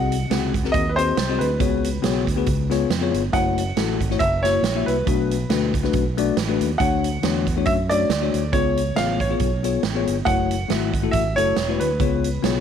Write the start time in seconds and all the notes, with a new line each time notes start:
Already playing: C2 C3 C4 F#4 G#4 D#5 F#5
0.12 closed hi-hat
0.30 C#2 C4 F#4 G#4 F#5, snare, closed hi-hat
0.54 kick, closed hi-hat
0.64 C4 F#4 G#4 A#4, snare
0.72 D#2 D#5, kick, closed hi-hat
0.89 B4
0.96 C4 F#4 G#4 C5 D#5, closed hi-hat
1.17 C2, snare, closed hi-hat
1.29 C4 F#4 G#4 D#5
1.39 D2 B4, closed hi-hat
1.59 C#2 C#3 B3 F#4 G#4 C#5, kick, closed hi-hat
1.84 closed hi-hat
2.02 B1 B3 F#4 G#4 C#5, snare, closed hi-hat
2.27 D2, kick, closed hi-hat
2.36 B3 F#4 G#4 B4
2.46 C#2 C#3, kick, closed hi-hat
2.70 B3 F4 G#4 C#5, snare, closed hi-hat
2.90 F2, snare, closed hi-hat
3.01 B3 F4 G#4 C#5
3.14 G1, closed hi-hat
3.33 F#1 A3 E4 F#4 C#5 F#5, kick, closed hi-hat
3.58 closed hi-hat
3.77 A1 A3 E4 F#4 A4, snare, closed hi-hat
4.01 G#1, kick, closed hi-hat
4.10 A3 E4 F#4 C#5, snare
4.19 F#1 E5, kick, closed hi-hat
4.43 A#3 E4 F#4 C#5, snare, closed hi-hat
4.63 A#1, snare, closed hi-hat
4.75 A#3 E4 F#4 E5
4.86 C2 B4, closed hi-hat
5.06 B1 B2 A3 D4 F#4 B4, kick, closed hi-hat
5.31 closed hi-hat
5.50 D2 A3 D4 F#4 B4, snare, closed hi-hat
5.74 C#2, kick, closed hi-hat
5.83 A3 D4 F#4 B4, snare
5.93 B1, kick, closed hi-hat
6.17 A3 D4 F#4 D5, closed hi-hat
6.37 A1, snare, closed hi-hat
6.48 A3 D4 F#4 B4
6.61 D#2, closed hi-hat
6.78 D2 D3 A3 D4 F#4 C#5 F#5, kick, closed hi-hat
7.04 closed hi-hat
7.23 E2 A3 D4 F#4 C#5, snare, closed hi-hat
7.47 kick, closed hi-hat
7.56 A3 D4 F#4 C#5
7.65 F#2 E5, kick, closed hi-hat
7.89 A3 D4 F#4 C#5 D5, closed hi-hat
8.09 D2, snare, closed hi-hat
8.21 A3 D4 F#4 C#5
8.34 D2, closed hi-hat
8.52 C#2 C#3 B3 F4 G#4 C#5, kick, closed hi-hat
8.77 closed hi-hat
8.96 A1 B3 F4 G#4 C#5 F5, snare, closed hi-hat
9.20 C#5, kick, closed hi-hat
9.30 B3 F4 G#4 C#5
9.39 B1, kick, closed hi-hat
9.63 B3 F4 G#4 C#5, closed hi-hat
9.83 A1, snare, closed hi-hat
9.95 B3 F4 G#4 C#5
10.07 G1, closed hi-hat
10.25 F#1 A3 E4 F#4 C#5 F#5, kick, closed hi-hat
10.51 closed hi-hat
10.69 G#1 A3 E4 F#4 E5, snare, closed hi-hat
10.94 kick, closed hi-hat
11.03 A3 E4 F#4 A4
11.11 A1 E5, kick, closed hi-hat
11.36 F#1 A3 E4 F#4 A4 C#5, closed hi-hat
11.56 E1, snare, closed hi-hat
11.68 A3 E4 F#4 B4 C#5
11.80 D2 B4, closed hi-hat
12.00 C#2 C#3 B3 F4 G#4 C#5, kick, closed hi-hat
12.24 closed hi-hat
12.43 B1 B3 F4 G#4 C#5, snare, closed hi-hat